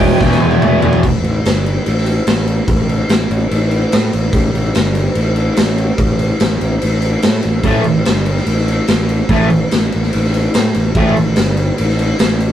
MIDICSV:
0, 0, Header, 1, 5, 480
1, 0, Start_track
1, 0, Tempo, 413508
1, 1197, Time_signature, 4, 2, 24, 8
1, 14533, End_track
2, 0, Start_track
2, 0, Title_t, "Lead electric guitar"
2, 0, Program_c, 0, 29
2, 0, Note_on_c, 0, 79, 99
2, 683, Note_off_c, 0, 79, 0
2, 14533, End_track
3, 0, Start_track
3, 0, Title_t, "Distorted electric guitar"
3, 0, Program_c, 1, 30
3, 0, Note_on_c, 1, 40, 78
3, 0, Note_on_c, 1, 47, 88
3, 0, Note_on_c, 1, 52, 84
3, 211, Note_off_c, 1, 40, 0
3, 225, Note_on_c, 1, 40, 94
3, 235, Note_off_c, 1, 47, 0
3, 249, Note_on_c, 1, 47, 100
3, 266, Note_off_c, 1, 52, 0
3, 280, Note_on_c, 1, 52, 104
3, 444, Note_off_c, 1, 52, 0
3, 458, Note_on_c, 1, 52, 81
3, 493, Note_off_c, 1, 47, 0
3, 507, Note_on_c, 1, 47, 62
3, 697, Note_off_c, 1, 40, 0
3, 711, Note_on_c, 1, 40, 84
3, 730, Note_off_c, 1, 47, 0
3, 744, Note_off_c, 1, 52, 0
3, 744, Note_on_c, 1, 47, 89
3, 758, Note_on_c, 1, 52, 90
3, 922, Note_off_c, 1, 52, 0
3, 936, Note_on_c, 1, 52, 78
3, 978, Note_off_c, 1, 47, 0
3, 992, Note_on_c, 1, 47, 67
3, 1172, Note_off_c, 1, 52, 0
3, 1179, Note_off_c, 1, 40, 0
3, 1200, Note_off_c, 1, 47, 0
3, 8872, Note_on_c, 1, 45, 91
3, 8883, Note_on_c, 1, 52, 96
3, 8886, Note_on_c, 1, 57, 109
3, 9064, Note_off_c, 1, 45, 0
3, 9070, Note_off_c, 1, 52, 0
3, 9071, Note_off_c, 1, 57, 0
3, 10793, Note_on_c, 1, 45, 102
3, 10811, Note_on_c, 1, 52, 101
3, 10814, Note_on_c, 1, 57, 107
3, 10986, Note_off_c, 1, 45, 0
3, 10995, Note_off_c, 1, 52, 0
3, 10997, Note_off_c, 1, 57, 0
3, 12728, Note_on_c, 1, 45, 108
3, 12742, Note_on_c, 1, 52, 101
3, 12750, Note_on_c, 1, 57, 102
3, 12915, Note_off_c, 1, 45, 0
3, 12922, Note_off_c, 1, 52, 0
3, 12926, Note_off_c, 1, 57, 0
3, 14533, End_track
4, 0, Start_track
4, 0, Title_t, "Fingered electric bass"
4, 0, Program_c, 2, 33
4, 0, Note_on_c, 2, 28, 90
4, 133, Note_off_c, 2, 28, 0
4, 240, Note_on_c, 2, 28, 103
4, 424, Note_off_c, 2, 28, 0
4, 474, Note_on_c, 2, 28, 94
4, 660, Note_off_c, 2, 28, 0
4, 709, Note_on_c, 2, 28, 91
4, 897, Note_off_c, 2, 28, 0
4, 941, Note_on_c, 2, 35, 93
4, 1132, Note_off_c, 2, 35, 0
4, 1201, Note_on_c, 2, 33, 89
4, 1386, Note_off_c, 2, 33, 0
4, 1418, Note_on_c, 2, 33, 87
4, 1611, Note_off_c, 2, 33, 0
4, 1673, Note_on_c, 2, 31, 89
4, 2046, Note_off_c, 2, 31, 0
4, 2165, Note_on_c, 2, 33, 97
4, 2534, Note_off_c, 2, 33, 0
4, 2634, Note_on_c, 2, 33, 86
4, 3007, Note_off_c, 2, 33, 0
4, 3105, Note_on_c, 2, 33, 91
4, 3481, Note_off_c, 2, 33, 0
4, 3592, Note_on_c, 2, 33, 87
4, 3779, Note_off_c, 2, 33, 0
4, 3833, Note_on_c, 2, 33, 90
4, 4019, Note_off_c, 2, 33, 0
4, 4077, Note_on_c, 2, 33, 93
4, 4449, Note_off_c, 2, 33, 0
4, 4564, Note_on_c, 2, 45, 90
4, 4746, Note_off_c, 2, 45, 0
4, 4802, Note_on_c, 2, 33, 86
4, 4984, Note_off_c, 2, 33, 0
4, 5035, Note_on_c, 2, 33, 92
4, 5220, Note_off_c, 2, 33, 0
4, 5266, Note_on_c, 2, 33, 88
4, 5455, Note_off_c, 2, 33, 0
4, 5518, Note_on_c, 2, 31, 93
4, 5889, Note_off_c, 2, 31, 0
4, 5983, Note_on_c, 2, 33, 98
4, 6360, Note_off_c, 2, 33, 0
4, 6477, Note_on_c, 2, 33, 91
4, 6848, Note_off_c, 2, 33, 0
4, 6938, Note_on_c, 2, 33, 94
4, 7317, Note_off_c, 2, 33, 0
4, 7438, Note_on_c, 2, 33, 92
4, 7622, Note_off_c, 2, 33, 0
4, 7668, Note_on_c, 2, 33, 82
4, 7856, Note_off_c, 2, 33, 0
4, 7927, Note_on_c, 2, 33, 95
4, 8295, Note_off_c, 2, 33, 0
4, 8409, Note_on_c, 2, 45, 87
4, 8589, Note_off_c, 2, 45, 0
4, 8650, Note_on_c, 2, 33, 90
4, 8830, Note_off_c, 2, 33, 0
4, 8867, Note_on_c, 2, 33, 89
4, 9056, Note_off_c, 2, 33, 0
4, 9114, Note_on_c, 2, 33, 84
4, 9300, Note_off_c, 2, 33, 0
4, 9362, Note_on_c, 2, 31, 83
4, 9732, Note_off_c, 2, 31, 0
4, 9824, Note_on_c, 2, 33, 92
4, 10202, Note_off_c, 2, 33, 0
4, 10315, Note_on_c, 2, 33, 89
4, 10689, Note_off_c, 2, 33, 0
4, 10783, Note_on_c, 2, 33, 90
4, 11162, Note_off_c, 2, 33, 0
4, 11289, Note_on_c, 2, 33, 84
4, 11471, Note_off_c, 2, 33, 0
4, 11542, Note_on_c, 2, 33, 88
4, 11719, Note_off_c, 2, 33, 0
4, 11781, Note_on_c, 2, 33, 99
4, 12146, Note_off_c, 2, 33, 0
4, 12249, Note_on_c, 2, 45, 91
4, 12431, Note_off_c, 2, 45, 0
4, 12488, Note_on_c, 2, 33, 90
4, 12671, Note_off_c, 2, 33, 0
4, 12721, Note_on_c, 2, 33, 93
4, 12907, Note_off_c, 2, 33, 0
4, 12974, Note_on_c, 2, 33, 85
4, 13155, Note_off_c, 2, 33, 0
4, 13207, Note_on_c, 2, 31, 95
4, 13578, Note_off_c, 2, 31, 0
4, 13690, Note_on_c, 2, 33, 101
4, 14060, Note_off_c, 2, 33, 0
4, 14156, Note_on_c, 2, 33, 90
4, 14531, Note_off_c, 2, 33, 0
4, 14533, End_track
5, 0, Start_track
5, 0, Title_t, "Drums"
5, 239, Note_on_c, 9, 36, 109
5, 243, Note_on_c, 9, 38, 71
5, 355, Note_off_c, 9, 36, 0
5, 359, Note_off_c, 9, 38, 0
5, 367, Note_on_c, 9, 38, 61
5, 483, Note_off_c, 9, 38, 0
5, 592, Note_on_c, 9, 48, 78
5, 708, Note_off_c, 9, 48, 0
5, 722, Note_on_c, 9, 47, 98
5, 838, Note_off_c, 9, 47, 0
5, 957, Note_on_c, 9, 43, 108
5, 1073, Note_off_c, 9, 43, 0
5, 1077, Note_on_c, 9, 43, 98
5, 1193, Note_off_c, 9, 43, 0
5, 1199, Note_on_c, 9, 36, 109
5, 1202, Note_on_c, 9, 49, 88
5, 1315, Note_off_c, 9, 36, 0
5, 1318, Note_off_c, 9, 49, 0
5, 1443, Note_on_c, 9, 49, 65
5, 1559, Note_off_c, 9, 49, 0
5, 1688, Note_on_c, 9, 49, 77
5, 1700, Note_on_c, 9, 38, 102
5, 1804, Note_off_c, 9, 49, 0
5, 1816, Note_off_c, 9, 38, 0
5, 1929, Note_on_c, 9, 49, 62
5, 2045, Note_off_c, 9, 49, 0
5, 2161, Note_on_c, 9, 49, 71
5, 2277, Note_off_c, 9, 49, 0
5, 2296, Note_on_c, 9, 38, 31
5, 2394, Note_on_c, 9, 49, 64
5, 2412, Note_off_c, 9, 38, 0
5, 2510, Note_off_c, 9, 49, 0
5, 2633, Note_on_c, 9, 49, 84
5, 2644, Note_on_c, 9, 38, 112
5, 2749, Note_off_c, 9, 49, 0
5, 2760, Note_off_c, 9, 38, 0
5, 2872, Note_on_c, 9, 49, 62
5, 2988, Note_off_c, 9, 49, 0
5, 3110, Note_on_c, 9, 36, 124
5, 3110, Note_on_c, 9, 49, 82
5, 3226, Note_off_c, 9, 36, 0
5, 3227, Note_off_c, 9, 49, 0
5, 3357, Note_on_c, 9, 49, 59
5, 3473, Note_off_c, 9, 49, 0
5, 3590, Note_on_c, 9, 49, 74
5, 3601, Note_on_c, 9, 38, 113
5, 3706, Note_off_c, 9, 49, 0
5, 3717, Note_off_c, 9, 38, 0
5, 3840, Note_on_c, 9, 49, 58
5, 3956, Note_off_c, 9, 49, 0
5, 4078, Note_on_c, 9, 49, 73
5, 4194, Note_off_c, 9, 49, 0
5, 4308, Note_on_c, 9, 49, 60
5, 4424, Note_off_c, 9, 49, 0
5, 4552, Note_on_c, 9, 49, 88
5, 4564, Note_on_c, 9, 38, 118
5, 4668, Note_off_c, 9, 49, 0
5, 4680, Note_off_c, 9, 38, 0
5, 4796, Note_on_c, 9, 49, 65
5, 4912, Note_off_c, 9, 49, 0
5, 5026, Note_on_c, 9, 36, 120
5, 5029, Note_on_c, 9, 49, 85
5, 5142, Note_off_c, 9, 36, 0
5, 5145, Note_off_c, 9, 49, 0
5, 5281, Note_on_c, 9, 49, 62
5, 5397, Note_off_c, 9, 49, 0
5, 5510, Note_on_c, 9, 49, 83
5, 5522, Note_on_c, 9, 38, 109
5, 5626, Note_off_c, 9, 49, 0
5, 5638, Note_off_c, 9, 38, 0
5, 5745, Note_on_c, 9, 49, 65
5, 5861, Note_off_c, 9, 49, 0
5, 5980, Note_on_c, 9, 49, 76
5, 6096, Note_off_c, 9, 49, 0
5, 6220, Note_on_c, 9, 49, 62
5, 6336, Note_off_c, 9, 49, 0
5, 6460, Note_on_c, 9, 49, 85
5, 6472, Note_on_c, 9, 38, 114
5, 6576, Note_off_c, 9, 49, 0
5, 6588, Note_off_c, 9, 38, 0
5, 6710, Note_on_c, 9, 49, 60
5, 6827, Note_off_c, 9, 49, 0
5, 6944, Note_on_c, 9, 36, 120
5, 6945, Note_on_c, 9, 49, 79
5, 7060, Note_off_c, 9, 36, 0
5, 7061, Note_off_c, 9, 49, 0
5, 7186, Note_on_c, 9, 49, 60
5, 7302, Note_off_c, 9, 49, 0
5, 7427, Note_on_c, 9, 49, 74
5, 7439, Note_on_c, 9, 38, 101
5, 7543, Note_off_c, 9, 49, 0
5, 7555, Note_off_c, 9, 38, 0
5, 7673, Note_on_c, 9, 49, 61
5, 7790, Note_off_c, 9, 49, 0
5, 7912, Note_on_c, 9, 49, 77
5, 8028, Note_off_c, 9, 49, 0
5, 8147, Note_on_c, 9, 49, 60
5, 8263, Note_off_c, 9, 49, 0
5, 8386, Note_on_c, 9, 49, 82
5, 8398, Note_on_c, 9, 38, 122
5, 8502, Note_off_c, 9, 49, 0
5, 8514, Note_off_c, 9, 38, 0
5, 8620, Note_on_c, 9, 49, 66
5, 8736, Note_off_c, 9, 49, 0
5, 8863, Note_on_c, 9, 36, 119
5, 8863, Note_on_c, 9, 49, 83
5, 8979, Note_off_c, 9, 36, 0
5, 8979, Note_off_c, 9, 49, 0
5, 9101, Note_on_c, 9, 49, 57
5, 9217, Note_off_c, 9, 49, 0
5, 9349, Note_on_c, 9, 49, 80
5, 9360, Note_on_c, 9, 38, 109
5, 9465, Note_off_c, 9, 49, 0
5, 9476, Note_off_c, 9, 38, 0
5, 9587, Note_on_c, 9, 49, 65
5, 9703, Note_off_c, 9, 49, 0
5, 9715, Note_on_c, 9, 38, 33
5, 9826, Note_on_c, 9, 49, 77
5, 9831, Note_off_c, 9, 38, 0
5, 9942, Note_off_c, 9, 49, 0
5, 9963, Note_on_c, 9, 38, 32
5, 10077, Note_on_c, 9, 49, 65
5, 10079, Note_off_c, 9, 38, 0
5, 10193, Note_off_c, 9, 49, 0
5, 10303, Note_on_c, 9, 49, 83
5, 10314, Note_on_c, 9, 38, 109
5, 10419, Note_off_c, 9, 49, 0
5, 10430, Note_off_c, 9, 38, 0
5, 10550, Note_on_c, 9, 49, 59
5, 10666, Note_off_c, 9, 49, 0
5, 10785, Note_on_c, 9, 36, 117
5, 10785, Note_on_c, 9, 49, 82
5, 10901, Note_off_c, 9, 36, 0
5, 10901, Note_off_c, 9, 49, 0
5, 11027, Note_on_c, 9, 49, 62
5, 11143, Note_off_c, 9, 49, 0
5, 11275, Note_on_c, 9, 49, 74
5, 11286, Note_on_c, 9, 38, 108
5, 11391, Note_off_c, 9, 49, 0
5, 11402, Note_off_c, 9, 38, 0
5, 11519, Note_on_c, 9, 49, 60
5, 11635, Note_off_c, 9, 49, 0
5, 11644, Note_on_c, 9, 38, 33
5, 11756, Note_on_c, 9, 49, 74
5, 11760, Note_off_c, 9, 38, 0
5, 11872, Note_off_c, 9, 49, 0
5, 11886, Note_on_c, 9, 38, 29
5, 12001, Note_on_c, 9, 49, 62
5, 12002, Note_off_c, 9, 38, 0
5, 12117, Note_off_c, 9, 49, 0
5, 12234, Note_on_c, 9, 49, 81
5, 12245, Note_on_c, 9, 38, 116
5, 12350, Note_off_c, 9, 49, 0
5, 12361, Note_off_c, 9, 38, 0
5, 12472, Note_on_c, 9, 49, 60
5, 12589, Note_off_c, 9, 49, 0
5, 12711, Note_on_c, 9, 36, 120
5, 12711, Note_on_c, 9, 49, 81
5, 12827, Note_off_c, 9, 36, 0
5, 12827, Note_off_c, 9, 49, 0
5, 12963, Note_on_c, 9, 49, 60
5, 13079, Note_off_c, 9, 49, 0
5, 13185, Note_on_c, 9, 49, 84
5, 13196, Note_on_c, 9, 38, 101
5, 13301, Note_off_c, 9, 49, 0
5, 13312, Note_off_c, 9, 38, 0
5, 13431, Note_on_c, 9, 49, 63
5, 13547, Note_off_c, 9, 49, 0
5, 13675, Note_on_c, 9, 49, 80
5, 13791, Note_off_c, 9, 49, 0
5, 13807, Note_on_c, 9, 38, 30
5, 13916, Note_on_c, 9, 49, 66
5, 13923, Note_off_c, 9, 38, 0
5, 14032, Note_off_c, 9, 49, 0
5, 14151, Note_on_c, 9, 49, 84
5, 14163, Note_on_c, 9, 38, 117
5, 14267, Note_off_c, 9, 49, 0
5, 14279, Note_off_c, 9, 38, 0
5, 14397, Note_on_c, 9, 49, 62
5, 14513, Note_off_c, 9, 49, 0
5, 14533, End_track
0, 0, End_of_file